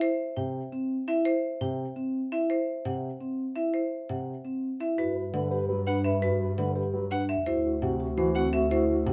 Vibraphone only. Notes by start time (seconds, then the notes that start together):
0.72 C4
1.08 E4
1.96 C4
2.32 E4
3.21 C4
3.56 E4
4.45 C4
4.80 E4
4.98 F#4
5.51 G4
5.87 D4
6.23 F#4
6.76 G4
7.11 D4
7.47 E4
8.00 F#4
8.35 C4
8.71 E4